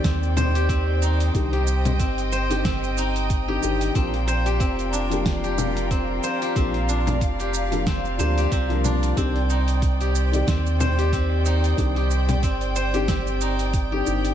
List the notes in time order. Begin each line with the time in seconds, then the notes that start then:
Already playing: D#3 C4 D#4 G4 C5 D5 G5
0.04 D#2 C4, kick, snare, open hi-hat, shaker
0.23 shaker
0.37 C5, low conga, shaker
0.55 G4, open hi-hat, shaker
0.69 C4, kick, open hi-hat, shaker
1.02 D#4, shaker
1.20 open hi-hat, shaker
1.33 C2 D#3 C4 D4 G4 D#5, kick, open hi-hat, shaker
1.53 G4, open hi-hat
1.67 shaker
1.85 open hi-hat, low conga, shaker
2.00 G1 C4, kick, open hi-hat, shaker
2.18 open hi-hat, shaker
2.32 C5, shaker
2.50 D#3 C4 D4 G4, open hi-hat, shaker
2.65 C4, kick, snare, open hi-hat, shaker
2.84 shaker
2.98 D#4, shaker
3.16 open hi-hat, shaker
3.30 kick, open hi-hat, shaker
3.47 D#3 C4 D4 G4
3.62 G1 D#3 C4 D4 G4, shaker
3.81 open hi-hat, shaker
3.94 A#1 F3 A#3 C4 D4 F4 G4 A#4 D5, kick, open hi-hat, shaker
4.14 open hi-hat
4.28 C5, shaker
4.46 G4, open hi-hat, shaker
4.60 F1 C4, kick, open hi-hat, shaker
4.79 open hi-hat, shaker
4.93 D4, shaker
5.10 F3 A#3 D4 G4, open hi-hat, shaker
5.26 kick, snare, open hi-hat, shaker
5.44 G4, shaker
5.58 low conga, shaker
5.77 open hi-hat, shaker
5.91 C4, kick, open hi-hat, shaker
6.23 C5, shaker
6.42 G4, open hi-hat, shaker
6.55 A#1 F3 A#3 C4 D4 G4 F5, kick, open hi-hat, shaker
6.74 open hi-hat
6.89 D4, shaker
7.07 open hi-hat, low conga, shaker
7.21 F1, kick, open hi-hat, shaker
7.40 G4, open hi-hat, shaker
7.54 shaker
7.71 F3 A#3 D4 G4, open hi-hat, shaker
7.87 C4, kick, snare, open hi-hat, shaker
8.05 shaker
8.18 D2 F3 A#3 D4 G4 C5, shaker
8.38 G4, open hi-hat, shaker
8.52 C2 C4, kick, open hi-hat, shaker
8.69 F3 A#3 D4 A#4, open hi-hat
8.85 D4, low conga, shaker
9.03 open hi-hat, shaker
9.16 C2 D#3 C4 D4 G4 C5 G5, kick, open hi-hat, shaker
9.36 open hi-hat
9.50 D#4, shaker
9.68 open hi-hat, shaker
9.82 kick, open hi-hat, shaker
10.01 G4, open hi-hat, shaker
10.15 shaker
10.32 D#3 C4 G4 D5, open hi-hat, shaker
10.47 D#2 C4, kick, snare, open hi-hat, shaker
10.66 shaker
10.80 C5, low conga, shaker
10.98 G4, open hi-hat, shaker
11.13 C4, kick, open hi-hat, shaker
11.46 D#4, shaker
11.64 open hi-hat, shaker
11.77 C2 D#3 C4 D4 G4, kick, open hi-hat, shaker
11.96 G4, open hi-hat
12.11 shaker
12.29 open hi-hat, low conga, shaker
12.43 G1 C4, kick, open hi-hat, shaker
12.61 open hi-hat, shaker
12.76 C5, shaker
12.93 D#3 C4 D4 G4, open hi-hat, shaker
13.08 C4, kick, snare, open hi-hat, shaker
13.27 shaker
13.41 D#4, shaker
13.59 open hi-hat, shaker
13.73 kick, open hi-hat, shaker
13.91 D#3 C4 D4 G4
14.06 G1 D#3 C4 D4 G4, shaker
14.25 open hi-hat, shaker